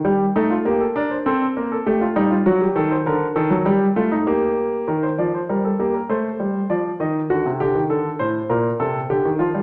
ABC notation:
X:1
M:4/4
L:1/16
Q:1/4=100
K:Gm
V:1 name="Grand piano"
G2 E F G A B c A2 B A G F E F | ^F G A c B2 A2 G2 =F E G4 | B c d c B A G B c4 d2 e2 | ^F2 G2 A2 c2 B2 A2 G2 =F2 |]
V:2 name="Grand piano" clef=bass
G,2 A,2 B,2 D2 C2 B,2 A,2 G,2 | ^F,2 E,2 D,2 E, F, G,2 A,2 B,4 | E,2 F,2 G,2 B,2 A,2 G,2 F,2 E,2 | D, C, D, E, D,2 A,,2 B,,2 C,2 D, E, F, G, |]